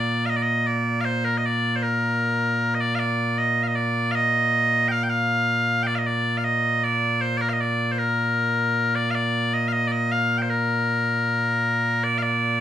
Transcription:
0, 0, Header, 1, 2, 480
1, 0, Start_track
1, 0, Key_signature, -2, "major"
1, 0, Tempo, 769231
1, 784, Time_signature, 2, 2, 24, 8
1, 7865, End_track
2, 0, Start_track
2, 0, Title_t, "Bagpipes"
2, 0, Program_c, 0, 109
2, 0, Note_on_c, 0, 46, 89
2, 0, Note_on_c, 0, 58, 89
2, 0, Note_on_c, 0, 74, 89
2, 162, Note_off_c, 0, 74, 0
2, 162, Note_on_c, 0, 77, 89
2, 185, Note_off_c, 0, 77, 0
2, 185, Note_on_c, 0, 75, 89
2, 227, Note_off_c, 0, 75, 0
2, 227, Note_on_c, 0, 74, 68
2, 264, Note_off_c, 0, 74, 0
2, 264, Note_on_c, 0, 75, 87
2, 415, Note_off_c, 0, 75, 0
2, 415, Note_on_c, 0, 74, 78
2, 629, Note_off_c, 0, 74, 0
2, 629, Note_on_c, 0, 77, 94
2, 655, Note_off_c, 0, 77, 0
2, 655, Note_on_c, 0, 72, 94
2, 777, Note_off_c, 0, 72, 0
2, 777, Note_on_c, 0, 70, 93
2, 858, Note_off_c, 0, 70, 0
2, 858, Note_on_c, 0, 75, 65
2, 909, Note_off_c, 0, 75, 0
2, 909, Note_on_c, 0, 74, 95
2, 1098, Note_off_c, 0, 74, 0
2, 1098, Note_on_c, 0, 72, 67
2, 1138, Note_off_c, 0, 72, 0
2, 1138, Note_on_c, 0, 70, 87
2, 1713, Note_off_c, 0, 70, 0
2, 1713, Note_on_c, 0, 75, 75
2, 1750, Note_off_c, 0, 75, 0
2, 1750, Note_on_c, 0, 74, 103
2, 1842, Note_off_c, 0, 74, 0
2, 1842, Note_on_c, 0, 77, 90
2, 1867, Note_off_c, 0, 77, 0
2, 1867, Note_on_c, 0, 74, 90
2, 2109, Note_off_c, 0, 74, 0
2, 2109, Note_on_c, 0, 75, 84
2, 2267, Note_off_c, 0, 75, 0
2, 2267, Note_on_c, 0, 77, 67
2, 2294, Note_off_c, 0, 77, 0
2, 2294, Note_on_c, 0, 75, 67
2, 2342, Note_off_c, 0, 75, 0
2, 2342, Note_on_c, 0, 74, 89
2, 2567, Note_off_c, 0, 74, 0
2, 2567, Note_on_c, 0, 77, 105
2, 2591, Note_off_c, 0, 77, 0
2, 2591, Note_on_c, 0, 75, 105
2, 3047, Note_off_c, 0, 75, 0
2, 3047, Note_on_c, 0, 79, 94
2, 3068, Note_off_c, 0, 79, 0
2, 3068, Note_on_c, 0, 77, 94
2, 3140, Note_off_c, 0, 77, 0
2, 3140, Note_on_c, 0, 79, 73
2, 3180, Note_off_c, 0, 79, 0
2, 3180, Note_on_c, 0, 77, 103
2, 3637, Note_off_c, 0, 77, 0
2, 3637, Note_on_c, 0, 79, 98
2, 3662, Note_off_c, 0, 79, 0
2, 3662, Note_on_c, 0, 74, 98
2, 3715, Note_off_c, 0, 74, 0
2, 3715, Note_on_c, 0, 77, 63
2, 3735, Note_off_c, 0, 77, 0
2, 3735, Note_on_c, 0, 75, 63
2, 3784, Note_off_c, 0, 75, 0
2, 3784, Note_on_c, 0, 74, 88
2, 3978, Note_off_c, 0, 74, 0
2, 3978, Note_on_c, 0, 77, 69
2, 4020, Note_off_c, 0, 77, 0
2, 4020, Note_on_c, 0, 75, 83
2, 4266, Note_off_c, 0, 75, 0
2, 4266, Note_on_c, 0, 74, 91
2, 4500, Note_off_c, 0, 74, 0
2, 4500, Note_on_c, 0, 72, 89
2, 4602, Note_off_c, 0, 72, 0
2, 4602, Note_on_c, 0, 74, 95
2, 4625, Note_off_c, 0, 74, 0
2, 4625, Note_on_c, 0, 70, 95
2, 4675, Note_off_c, 0, 70, 0
2, 4675, Note_on_c, 0, 77, 68
2, 4699, Note_off_c, 0, 77, 0
2, 4699, Note_on_c, 0, 75, 68
2, 4746, Note_off_c, 0, 75, 0
2, 4746, Note_on_c, 0, 74, 89
2, 4941, Note_off_c, 0, 74, 0
2, 4941, Note_on_c, 0, 72, 62
2, 4982, Note_off_c, 0, 72, 0
2, 4982, Note_on_c, 0, 70, 83
2, 5586, Note_off_c, 0, 70, 0
2, 5586, Note_on_c, 0, 74, 98
2, 5683, Note_off_c, 0, 74, 0
2, 5683, Note_on_c, 0, 77, 91
2, 5709, Note_off_c, 0, 77, 0
2, 5709, Note_on_c, 0, 74, 91
2, 5951, Note_off_c, 0, 74, 0
2, 5951, Note_on_c, 0, 75, 93
2, 6041, Note_off_c, 0, 75, 0
2, 6041, Note_on_c, 0, 77, 66
2, 6069, Note_off_c, 0, 77, 0
2, 6069, Note_on_c, 0, 75, 97
2, 6162, Note_off_c, 0, 75, 0
2, 6162, Note_on_c, 0, 74, 71
2, 6188, Note_off_c, 0, 74, 0
2, 6188, Note_on_c, 0, 75, 92
2, 6313, Note_off_c, 0, 75, 0
2, 6313, Note_on_c, 0, 77, 93
2, 6477, Note_off_c, 0, 77, 0
2, 6477, Note_on_c, 0, 79, 63
2, 6503, Note_off_c, 0, 79, 0
2, 6503, Note_on_c, 0, 72, 63
2, 6550, Note_off_c, 0, 72, 0
2, 6550, Note_on_c, 0, 70, 85
2, 7510, Note_off_c, 0, 70, 0
2, 7510, Note_on_c, 0, 74, 96
2, 7601, Note_off_c, 0, 74, 0
2, 7601, Note_on_c, 0, 77, 86
2, 7629, Note_off_c, 0, 77, 0
2, 7629, Note_on_c, 0, 74, 86
2, 7865, Note_off_c, 0, 46, 0
2, 7865, Note_off_c, 0, 58, 0
2, 7865, Note_off_c, 0, 74, 0
2, 7865, End_track
0, 0, End_of_file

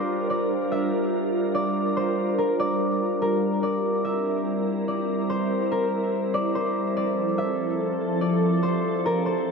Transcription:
0, 0, Header, 1, 3, 480
1, 0, Start_track
1, 0, Tempo, 416667
1, 104, Time_signature, 4, 2, 24, 8
1, 10961, End_track
2, 0, Start_track
2, 0, Title_t, "Harp"
2, 0, Program_c, 0, 46
2, 0, Note_on_c, 0, 70, 80
2, 0, Note_on_c, 0, 72, 81
2, 0, Note_on_c, 0, 74, 87
2, 340, Note_off_c, 0, 74, 0
2, 345, Note_on_c, 0, 74, 81
2, 825, Note_on_c, 0, 76, 84
2, 1359, Note_off_c, 0, 70, 0
2, 1776, Note_off_c, 0, 74, 0
2, 1781, Note_on_c, 0, 74, 76
2, 2141, Note_off_c, 0, 72, 0
2, 2266, Note_on_c, 0, 72, 84
2, 2747, Note_on_c, 0, 70, 86
2, 2810, Note_off_c, 0, 76, 0
2, 2986, Note_off_c, 0, 74, 0
2, 2990, Note_on_c, 0, 74, 84
2, 3702, Note_off_c, 0, 70, 0
2, 3707, Note_on_c, 0, 70, 88
2, 4176, Note_off_c, 0, 74, 0
2, 4180, Note_on_c, 0, 74, 83
2, 4546, Note_off_c, 0, 72, 0
2, 4662, Note_on_c, 0, 76, 80
2, 5617, Note_off_c, 0, 74, 0
2, 5621, Note_on_c, 0, 74, 72
2, 6102, Note_on_c, 0, 72, 86
2, 6150, Note_off_c, 0, 70, 0
2, 6584, Note_on_c, 0, 70, 74
2, 6647, Note_off_c, 0, 76, 0
2, 7299, Note_off_c, 0, 74, 0
2, 7304, Note_on_c, 0, 74, 92
2, 7542, Note_off_c, 0, 72, 0
2, 7547, Note_on_c, 0, 72, 78
2, 8021, Note_off_c, 0, 74, 0
2, 8025, Note_on_c, 0, 74, 78
2, 8502, Note_on_c, 0, 76, 89
2, 9028, Note_off_c, 0, 70, 0
2, 9455, Note_off_c, 0, 74, 0
2, 9460, Note_on_c, 0, 74, 82
2, 9827, Note_off_c, 0, 72, 0
2, 9939, Note_on_c, 0, 72, 87
2, 10433, Note_on_c, 0, 70, 90
2, 10487, Note_off_c, 0, 76, 0
2, 10660, Note_off_c, 0, 72, 0
2, 10665, Note_on_c, 0, 72, 81
2, 10961, Note_off_c, 0, 70, 0
2, 10961, Note_off_c, 0, 72, 0
2, 10961, Note_off_c, 0, 74, 0
2, 10961, End_track
3, 0, Start_track
3, 0, Title_t, "Ambient pad"
3, 0, Program_c, 1, 92
3, 0, Note_on_c, 1, 55, 85
3, 0, Note_on_c, 1, 62, 75
3, 0, Note_on_c, 1, 65, 76
3, 0, Note_on_c, 1, 70, 91
3, 3897, Note_off_c, 1, 62, 0
3, 3897, Note_off_c, 1, 65, 0
3, 3944, Note_on_c, 1, 64, 77
3, 3945, Note_on_c, 1, 60, 77
3, 7737, Note_off_c, 1, 55, 0
3, 7737, Note_off_c, 1, 70, 0
3, 7784, Note_on_c, 1, 53, 85
3, 7784, Note_on_c, 1, 69, 93
3, 10961, Note_off_c, 1, 53, 0
3, 10961, Note_off_c, 1, 60, 0
3, 10961, Note_off_c, 1, 64, 0
3, 10961, Note_off_c, 1, 69, 0
3, 10961, End_track
0, 0, End_of_file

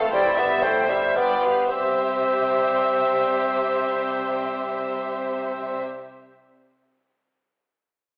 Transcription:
0, 0, Header, 1, 10, 480
1, 0, Start_track
1, 0, Key_signature, 0, "major"
1, 0, Tempo, 517688
1, 120, Time_signature, 3, 2, 24, 8
1, 1085, Tempo, 556070
1, 7132, End_track
2, 0, Start_track
2, 0, Title_t, "Violin section"
2, 0, Program_c, 0, 48
2, 0, Note_on_c, 0, 77, 42
2, 125, Note_off_c, 0, 77, 0
2, 129, Note_on_c, 0, 79, 46
2, 342, Note_off_c, 0, 79, 0
2, 353, Note_on_c, 0, 76, 39
2, 584, Note_on_c, 0, 79, 37
2, 592, Note_off_c, 0, 76, 0
2, 832, Note_off_c, 0, 79, 0
2, 833, Note_on_c, 0, 76, 34
2, 1076, Note_on_c, 0, 79, 35
2, 1084, Note_off_c, 0, 76, 0
2, 1303, Note_off_c, 0, 79, 0
2, 1323, Note_on_c, 0, 77, 34
2, 1563, Note_off_c, 0, 77, 0
2, 1563, Note_on_c, 0, 76, 42
2, 5096, Note_off_c, 0, 76, 0
2, 7132, End_track
3, 0, Start_track
3, 0, Title_t, "Clarinet"
3, 0, Program_c, 1, 71
3, 110, Note_on_c, 1, 74, 54
3, 574, Note_on_c, 1, 72, 53
3, 588, Note_off_c, 1, 74, 0
3, 1069, Note_on_c, 1, 71, 43
3, 1083, Note_off_c, 1, 72, 0
3, 1316, Note_off_c, 1, 71, 0
3, 7132, End_track
4, 0, Start_track
4, 0, Title_t, "Violin section"
4, 0, Program_c, 2, 48
4, 0, Note_on_c, 2, 69, 43
4, 109, Note_on_c, 2, 72, 43
4, 116, Note_off_c, 2, 69, 0
4, 331, Note_off_c, 2, 72, 0
4, 335, Note_on_c, 2, 76, 39
4, 573, Note_on_c, 2, 72, 41
4, 583, Note_off_c, 2, 76, 0
4, 824, Note_on_c, 2, 76, 36
4, 826, Note_off_c, 2, 72, 0
4, 1079, Note_off_c, 2, 76, 0
4, 1084, Note_on_c, 2, 74, 37
4, 1306, Note_off_c, 2, 74, 0
4, 1313, Note_on_c, 2, 71, 36
4, 1557, Note_on_c, 2, 72, 38
4, 1559, Note_off_c, 2, 71, 0
4, 5092, Note_off_c, 2, 72, 0
4, 7132, End_track
5, 0, Start_track
5, 0, Title_t, "Viola section"
5, 0, Program_c, 3, 48
5, 0, Note_on_c, 3, 69, 44
5, 116, Note_off_c, 3, 69, 0
5, 123, Note_on_c, 3, 64, 46
5, 338, Note_off_c, 3, 64, 0
5, 352, Note_on_c, 3, 67, 39
5, 591, Note_off_c, 3, 67, 0
5, 603, Note_on_c, 3, 64, 39
5, 836, Note_on_c, 3, 67, 34
5, 841, Note_off_c, 3, 64, 0
5, 1085, Note_off_c, 3, 67, 0
5, 1088, Note_on_c, 3, 65, 34
5, 1308, Note_off_c, 3, 65, 0
5, 1331, Note_on_c, 3, 67, 33
5, 1563, Note_off_c, 3, 67, 0
5, 1573, Note_on_c, 3, 67, 43
5, 5101, Note_off_c, 3, 67, 0
5, 7132, End_track
6, 0, Start_track
6, 0, Title_t, "Bassoon"
6, 0, Program_c, 4, 70
6, 0, Note_on_c, 4, 57, 55
6, 53, Note_off_c, 4, 57, 0
6, 122, Note_on_c, 4, 55, 63
6, 357, Note_on_c, 4, 59, 70
6, 371, Note_off_c, 4, 55, 0
6, 586, Note_on_c, 4, 57, 57
6, 600, Note_off_c, 4, 59, 0
6, 829, Note_on_c, 4, 55, 52
6, 843, Note_off_c, 4, 57, 0
6, 1079, Note_on_c, 4, 59, 52
6, 1093, Note_off_c, 4, 55, 0
6, 1546, Note_off_c, 4, 59, 0
6, 1551, Note_on_c, 4, 60, 51
6, 5090, Note_off_c, 4, 60, 0
6, 7132, End_track
7, 0, Start_track
7, 0, Title_t, "French horn section"
7, 0, Program_c, 5, 60
7, 17, Note_on_c, 5, 57, 47
7, 124, Note_off_c, 5, 57, 0
7, 126, Note_on_c, 5, 55, 55
7, 352, Note_off_c, 5, 55, 0
7, 356, Note_on_c, 5, 59, 53
7, 588, Note_off_c, 5, 59, 0
7, 605, Note_on_c, 5, 57, 42
7, 837, Note_off_c, 5, 57, 0
7, 844, Note_on_c, 5, 55, 46
7, 1089, Note_off_c, 5, 55, 0
7, 1100, Note_on_c, 5, 59, 44
7, 1562, Note_off_c, 5, 59, 0
7, 1571, Note_on_c, 5, 55, 40
7, 5100, Note_off_c, 5, 55, 0
7, 7132, End_track
8, 0, Start_track
8, 0, Title_t, "Timpani"
8, 0, Program_c, 6, 47
8, 115, Note_on_c, 6, 43, 49
8, 796, Note_off_c, 6, 43, 0
8, 1555, Note_on_c, 6, 48, 29
8, 5435, Note_off_c, 6, 48, 0
8, 7132, End_track
9, 0, Start_track
9, 0, Title_t, "Cello section"
9, 0, Program_c, 7, 48
9, 0, Note_on_c, 7, 41, 50
9, 118, Note_off_c, 7, 41, 0
9, 120, Note_on_c, 7, 43, 53
9, 1332, Note_off_c, 7, 43, 0
9, 1567, Note_on_c, 7, 48, 43
9, 5097, Note_off_c, 7, 48, 0
9, 7132, End_track
10, 0, Start_track
10, 0, Title_t, "Double bass section"
10, 0, Program_c, 8, 48
10, 0, Note_on_c, 8, 29, 49
10, 127, Note_off_c, 8, 29, 0
10, 127, Note_on_c, 8, 31, 50
10, 1336, Note_off_c, 8, 31, 0
10, 1563, Note_on_c, 8, 36, 39
10, 5095, Note_off_c, 8, 36, 0
10, 7132, End_track
0, 0, End_of_file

